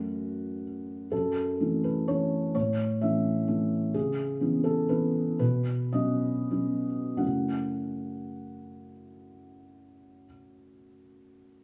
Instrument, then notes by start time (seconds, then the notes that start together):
felt piano
Already playing: F#2 F#3 A3 C#4 F#4
1.11 F#2 A4
1.60 E3 A3 C#4
1.84 B4
2.08 E3 A3 C#4 C#5
2.55 A2 C#5
3.01 E3 A3 C#4 E5
3.47 E3 A3 C#4
3.94 C#3 G#4
4.40 E3 B3 C#4
4.64 A4
4.89 E3 B3 C#4 B4
5.39 B2 B4
5.93 F#3 B3 C#4 D#5
6.51 F#3 B3 C#4
7.17 F#2 C#3 A3 C#4 E4 F#4 F#5